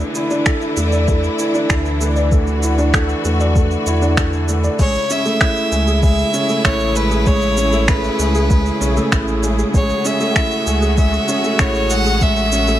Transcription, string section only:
0, 0, Header, 1, 2, 480
1, 0, Start_track
1, 0, Key_signature, 3, "major"
1, 0, Tempo, 618557
1, 1799, Time_signature, 4, 2, 24, 8
1, 9929, End_track
2, 0, Start_track
2, 0, Title_t, "String section"
2, 0, Program_c, 0, 48
2, 0, Note_on_c, 0, 50, 82
2, 0, Note_on_c, 0, 52, 71
2, 0, Note_on_c, 0, 64, 86
2, 1777, Note_off_c, 0, 64, 0
2, 1799, Note_on_c, 0, 66, 83
2, 3687, Note_off_c, 0, 52, 0
2, 3689, Note_off_c, 0, 50, 0
2, 3700, Note_off_c, 0, 66, 0
2, 3721, Note_on_c, 0, 49, 73
2, 3722, Note_on_c, 0, 68, 73
2, 3723, Note_on_c, 0, 64, 86
2, 7530, Note_off_c, 0, 64, 0
2, 7557, Note_on_c, 0, 66, 88
2, 9929, Note_off_c, 0, 49, 0
2, 9929, Note_off_c, 0, 66, 0
2, 9929, Note_off_c, 0, 68, 0
2, 9929, End_track
0, 0, End_of_file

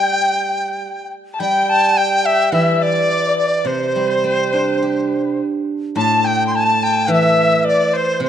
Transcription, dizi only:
0, 0, Header, 1, 2, 480
1, 0, Start_track
1, 0, Tempo, 561798
1, 1210, Time_signature, 4, 2, 24, 8
1, 2650, Tempo, 574163
1, 5050, Tempo, 562852
1, 7026, End_track
2, 0, Start_track
2, 0, Title_t, "Dizi"
2, 0, Program_c, 0, 73
2, 0, Note_on_c, 0, 79, 85
2, 968, Note_off_c, 0, 79, 0
2, 1208, Note_on_c, 0, 79, 95
2, 1446, Note_on_c, 0, 81, 105
2, 1459, Note_off_c, 0, 79, 0
2, 1685, Note_on_c, 0, 79, 100
2, 1698, Note_off_c, 0, 81, 0
2, 1926, Note_on_c, 0, 76, 95
2, 1939, Note_off_c, 0, 79, 0
2, 2157, Note_off_c, 0, 76, 0
2, 2162, Note_on_c, 0, 76, 79
2, 2396, Note_on_c, 0, 74, 89
2, 2409, Note_off_c, 0, 76, 0
2, 2880, Note_off_c, 0, 74, 0
2, 2886, Note_on_c, 0, 74, 82
2, 3122, Note_on_c, 0, 72, 81
2, 3135, Note_off_c, 0, 74, 0
2, 4570, Note_off_c, 0, 72, 0
2, 5056, Note_on_c, 0, 81, 96
2, 5299, Note_on_c, 0, 79, 100
2, 5312, Note_off_c, 0, 81, 0
2, 5468, Note_off_c, 0, 79, 0
2, 5473, Note_on_c, 0, 84, 66
2, 5546, Note_on_c, 0, 81, 93
2, 5559, Note_off_c, 0, 84, 0
2, 5785, Note_on_c, 0, 79, 93
2, 5798, Note_off_c, 0, 81, 0
2, 6021, Note_off_c, 0, 79, 0
2, 6039, Note_on_c, 0, 76, 89
2, 6474, Note_off_c, 0, 76, 0
2, 6508, Note_on_c, 0, 74, 98
2, 6750, Note_on_c, 0, 72, 87
2, 6763, Note_off_c, 0, 74, 0
2, 6980, Note_off_c, 0, 72, 0
2, 6987, Note_on_c, 0, 72, 88
2, 7026, Note_off_c, 0, 72, 0
2, 7026, End_track
0, 0, End_of_file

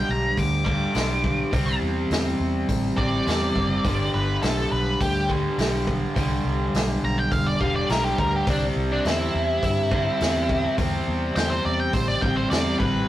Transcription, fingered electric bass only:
0, 0, Header, 1, 2, 480
1, 0, Start_track
1, 0, Tempo, 578035
1, 1275, Time_signature, 4, 2, 24, 8
1, 10863, End_track
2, 0, Start_track
2, 0, Title_t, "Fingered electric bass"
2, 0, Program_c, 0, 33
2, 75, Note_on_c, 0, 35, 73
2, 267, Note_off_c, 0, 35, 0
2, 311, Note_on_c, 0, 38, 85
2, 696, Note_off_c, 0, 38, 0
2, 788, Note_on_c, 0, 35, 89
2, 1175, Note_off_c, 0, 35, 0
2, 1272, Note_on_c, 0, 36, 81
2, 1465, Note_off_c, 0, 36, 0
2, 1509, Note_on_c, 0, 40, 80
2, 1704, Note_off_c, 0, 40, 0
2, 1747, Note_on_c, 0, 40, 90
2, 1943, Note_off_c, 0, 40, 0
2, 1991, Note_on_c, 0, 40, 79
2, 2185, Note_off_c, 0, 40, 0
2, 2232, Note_on_c, 0, 33, 82
2, 2426, Note_off_c, 0, 33, 0
2, 2473, Note_on_c, 0, 33, 87
2, 2667, Note_off_c, 0, 33, 0
2, 2716, Note_on_c, 0, 40, 93
2, 2909, Note_off_c, 0, 40, 0
2, 2957, Note_on_c, 0, 30, 75
2, 3149, Note_off_c, 0, 30, 0
2, 3195, Note_on_c, 0, 31, 80
2, 3388, Note_off_c, 0, 31, 0
2, 3437, Note_on_c, 0, 31, 83
2, 3629, Note_off_c, 0, 31, 0
2, 3677, Note_on_c, 0, 35, 88
2, 3869, Note_off_c, 0, 35, 0
2, 3916, Note_on_c, 0, 35, 77
2, 4109, Note_off_c, 0, 35, 0
2, 4159, Note_on_c, 0, 38, 90
2, 4542, Note_off_c, 0, 38, 0
2, 4632, Note_on_c, 0, 35, 86
2, 5018, Note_off_c, 0, 35, 0
2, 5118, Note_on_c, 0, 36, 86
2, 5309, Note_off_c, 0, 36, 0
2, 5354, Note_on_c, 0, 36, 85
2, 5547, Note_off_c, 0, 36, 0
2, 5594, Note_on_c, 0, 35, 87
2, 5787, Note_off_c, 0, 35, 0
2, 5838, Note_on_c, 0, 35, 78
2, 6029, Note_off_c, 0, 35, 0
2, 6077, Note_on_c, 0, 28, 86
2, 6269, Note_off_c, 0, 28, 0
2, 6316, Note_on_c, 0, 28, 89
2, 6508, Note_off_c, 0, 28, 0
2, 6555, Note_on_c, 0, 35, 92
2, 6747, Note_off_c, 0, 35, 0
2, 6796, Note_on_c, 0, 38, 78
2, 6988, Note_off_c, 0, 38, 0
2, 7036, Note_on_c, 0, 36, 81
2, 7227, Note_off_c, 0, 36, 0
2, 7274, Note_on_c, 0, 36, 81
2, 7466, Note_off_c, 0, 36, 0
2, 7516, Note_on_c, 0, 40, 86
2, 7707, Note_off_c, 0, 40, 0
2, 7759, Note_on_c, 0, 40, 82
2, 7949, Note_off_c, 0, 40, 0
2, 7997, Note_on_c, 0, 43, 92
2, 8378, Note_off_c, 0, 43, 0
2, 8480, Note_on_c, 0, 40, 91
2, 8860, Note_off_c, 0, 40, 0
2, 8952, Note_on_c, 0, 40, 80
2, 9144, Note_off_c, 0, 40, 0
2, 9200, Note_on_c, 0, 40, 76
2, 9388, Note_off_c, 0, 40, 0
2, 9433, Note_on_c, 0, 40, 83
2, 9624, Note_off_c, 0, 40, 0
2, 9674, Note_on_c, 0, 40, 81
2, 9864, Note_off_c, 0, 40, 0
2, 9910, Note_on_c, 0, 33, 88
2, 10101, Note_off_c, 0, 33, 0
2, 10152, Note_on_c, 0, 33, 91
2, 10343, Note_off_c, 0, 33, 0
2, 10392, Note_on_c, 0, 40, 96
2, 10582, Note_off_c, 0, 40, 0
2, 10630, Note_on_c, 0, 33, 82
2, 10821, Note_off_c, 0, 33, 0
2, 10863, End_track
0, 0, End_of_file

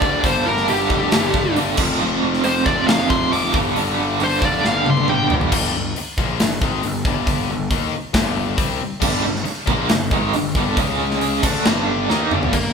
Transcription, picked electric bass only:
0, 0, Header, 1, 3, 480
1, 0, Start_track
1, 0, Key_signature, -2, "minor"
1, 0, Tempo, 438917
1, 272, Time_signature, 4, 2, 24, 8
1, 13922, End_track
2, 0, Start_track
2, 0, Title_t, "Picked electric bass"
2, 0, Program_c, 0, 34
2, 18, Note_on_c, 0, 38, 96
2, 249, Note_off_c, 0, 38, 0
2, 257, Note_on_c, 0, 31, 97
2, 489, Note_off_c, 0, 31, 0
2, 516, Note_on_c, 0, 31, 107
2, 739, Note_off_c, 0, 31, 0
2, 767, Note_on_c, 0, 31, 109
2, 978, Note_off_c, 0, 31, 0
2, 984, Note_on_c, 0, 29, 91
2, 1214, Note_off_c, 0, 29, 0
2, 1234, Note_on_c, 0, 31, 88
2, 1459, Note_off_c, 0, 31, 0
2, 1464, Note_on_c, 0, 31, 96
2, 1694, Note_off_c, 0, 31, 0
2, 1717, Note_on_c, 0, 31, 95
2, 1938, Note_off_c, 0, 31, 0
2, 1944, Note_on_c, 0, 29, 107
2, 2175, Note_off_c, 0, 29, 0
2, 2190, Note_on_c, 0, 29, 103
2, 2418, Note_off_c, 0, 29, 0
2, 2431, Note_on_c, 0, 29, 108
2, 2659, Note_off_c, 0, 29, 0
2, 2667, Note_on_c, 0, 29, 104
2, 2897, Note_off_c, 0, 29, 0
2, 2910, Note_on_c, 0, 29, 86
2, 3139, Note_off_c, 0, 29, 0
2, 3147, Note_on_c, 0, 29, 95
2, 3377, Note_off_c, 0, 29, 0
2, 3389, Note_on_c, 0, 29, 101
2, 3619, Note_off_c, 0, 29, 0
2, 3632, Note_on_c, 0, 29, 96
2, 3860, Note_off_c, 0, 29, 0
2, 3872, Note_on_c, 0, 31, 102
2, 4100, Note_off_c, 0, 31, 0
2, 4122, Note_on_c, 0, 31, 107
2, 4346, Note_off_c, 0, 31, 0
2, 4354, Note_on_c, 0, 31, 107
2, 4581, Note_off_c, 0, 31, 0
2, 4598, Note_on_c, 0, 31, 104
2, 4824, Note_off_c, 0, 31, 0
2, 4832, Note_on_c, 0, 29, 90
2, 5060, Note_off_c, 0, 29, 0
2, 5082, Note_on_c, 0, 31, 95
2, 5306, Note_off_c, 0, 31, 0
2, 5319, Note_on_c, 0, 31, 95
2, 5544, Note_off_c, 0, 31, 0
2, 5558, Note_on_c, 0, 31, 91
2, 5784, Note_off_c, 0, 31, 0
2, 5792, Note_on_c, 0, 31, 94
2, 6021, Note_off_c, 0, 31, 0
2, 6036, Note_on_c, 0, 31, 101
2, 6261, Note_off_c, 0, 31, 0
2, 6274, Note_on_c, 0, 31, 90
2, 6500, Note_off_c, 0, 31, 0
2, 6757, Note_on_c, 0, 34, 88
2, 6981, Note_off_c, 0, 34, 0
2, 7004, Note_on_c, 0, 31, 77
2, 7226, Note_off_c, 0, 31, 0
2, 7231, Note_on_c, 0, 32, 104
2, 7458, Note_off_c, 0, 32, 0
2, 7486, Note_on_c, 0, 31, 81
2, 7701, Note_off_c, 0, 31, 0
2, 7708, Note_on_c, 0, 31, 102
2, 8159, Note_off_c, 0, 31, 0
2, 8197, Note_on_c, 0, 31, 87
2, 8421, Note_off_c, 0, 31, 0
2, 8431, Note_on_c, 0, 39, 108
2, 8657, Note_off_c, 0, 39, 0
2, 8901, Note_on_c, 0, 31, 89
2, 9354, Note_off_c, 0, 31, 0
2, 9384, Note_on_c, 0, 36, 96
2, 9612, Note_off_c, 0, 36, 0
2, 9865, Note_on_c, 0, 31, 94
2, 10092, Note_off_c, 0, 31, 0
2, 10098, Note_on_c, 0, 31, 88
2, 10328, Note_off_c, 0, 31, 0
2, 10581, Note_on_c, 0, 34, 100
2, 10809, Note_off_c, 0, 34, 0
2, 10826, Note_on_c, 0, 31, 79
2, 11051, Note_off_c, 0, 31, 0
2, 11059, Note_on_c, 0, 32, 104
2, 11287, Note_off_c, 0, 32, 0
2, 11305, Note_on_c, 0, 31, 77
2, 11530, Note_off_c, 0, 31, 0
2, 11542, Note_on_c, 0, 31, 105
2, 11768, Note_off_c, 0, 31, 0
2, 11776, Note_on_c, 0, 37, 95
2, 12457, Note_off_c, 0, 37, 0
2, 12501, Note_on_c, 0, 38, 90
2, 12727, Note_off_c, 0, 38, 0
2, 12750, Note_on_c, 0, 31, 90
2, 13195, Note_off_c, 0, 31, 0
2, 13236, Note_on_c, 0, 39, 87
2, 13455, Note_off_c, 0, 39, 0
2, 13460, Note_on_c, 0, 31, 99
2, 13687, Note_off_c, 0, 31, 0
2, 13704, Note_on_c, 0, 31, 90
2, 13896, Note_off_c, 0, 31, 0
2, 13922, End_track
3, 0, Start_track
3, 0, Title_t, "Muted picked electric bass strokes"
3, 6524, Note_on_c, 9, 29, 46
3, 6634, Note_off_c, 9, 29, 0
3, 8681, Note_on_c, 9, 29, 42
3, 8790, Note_off_c, 9, 29, 0
3, 9632, Note_on_c, 9, 29, 44
3, 9741, Note_off_c, 9, 29, 0
3, 10342, Note_on_c, 9, 29, 48
3, 10452, Note_off_c, 9, 29, 0
3, 13922, End_track
0, 0, End_of_file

